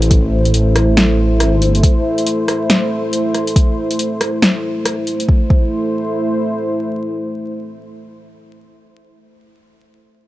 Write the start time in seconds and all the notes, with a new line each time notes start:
Already playing: A1 A3 E4 C5
0.02 closed hi-hat
0.11 kick, closed hi-hat
0.45 closed hi-hat
0.54 A1, closed hi-hat
0.76 cross-stick, closed hi-hat
0.97 snare, closed hi-hat
1.40 G#1, cross-stick, closed hi-hat
1.62 closed hi-hat
1.70 G1
1.75 closed hi-hat
1.83 kick, closed hi-hat
2.18 closed hi-hat
2.26 closed hi-hat
2.48 cross-stick, closed hi-hat
2.70 snare, closed hi-hat
3.13 closed hi-hat
3.35 cross-stick, closed hi-hat
3.47 closed hi-hat
3.56 kick, closed hi-hat
3.91 closed hi-hat
3.99 closed hi-hat
4.21 cross-stick, closed hi-hat
4.42 snare, closed hi-hat
4.86 cross-stick, closed hi-hat
5.07 closed hi-hat
5.20 closed hi-hat
5.29 A3 E4 C5, kick
5.50 kick